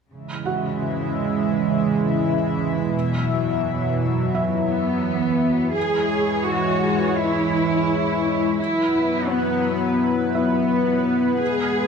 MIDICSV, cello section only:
0, 0, Header, 1, 2, 480
1, 0, Start_track
1, 0, Key_signature, 4, "minor"
1, 0, Tempo, 705882
1, 75, Time_signature, 4, 2, 24, 8
1, 8072, End_track
2, 0, Start_track
2, 0, Title_t, "Cello section"
2, 0, Program_c, 0, 48
2, 77, Note_on_c, 0, 49, 36
2, 1969, Note_off_c, 0, 49, 0
2, 1998, Note_on_c, 0, 47, 46
2, 3173, Note_off_c, 0, 47, 0
2, 3197, Note_on_c, 0, 59, 56
2, 3889, Note_off_c, 0, 59, 0
2, 3916, Note_on_c, 0, 68, 59
2, 4396, Note_off_c, 0, 68, 0
2, 4396, Note_on_c, 0, 66, 57
2, 4876, Note_off_c, 0, 66, 0
2, 4879, Note_on_c, 0, 64, 57
2, 5832, Note_off_c, 0, 64, 0
2, 5841, Note_on_c, 0, 64, 60
2, 6309, Note_off_c, 0, 64, 0
2, 6320, Note_on_c, 0, 59, 52
2, 6798, Note_off_c, 0, 59, 0
2, 7036, Note_on_c, 0, 59, 52
2, 7729, Note_off_c, 0, 59, 0
2, 7752, Note_on_c, 0, 68, 61
2, 8072, Note_off_c, 0, 68, 0
2, 8072, End_track
0, 0, End_of_file